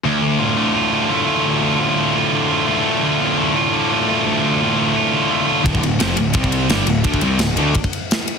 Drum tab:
RD |----------------|----------------|----------------|----------------|
SD |----------------|----------------|----------------|----------------|
BD |----------------|----------------|----------------|----------------|

RD |x-x-x-x-x-x-x-x-|x-x-x-x-x-x-x-x-|
SD |----o-------o---|----o-------o---|
BD |oo------oo------|oo------oo------|